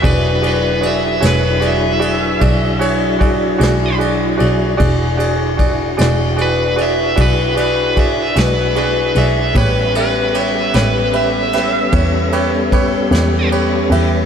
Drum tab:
RD |xxxxxxxxxxxx|xxxxxxxxxxxx|xxxxxxxxxxxx|
SD |---o-----o--|---o-----o--|---o-o---o--|
BD |o-----o-o---|o-o---o-o---|o-----o-o---|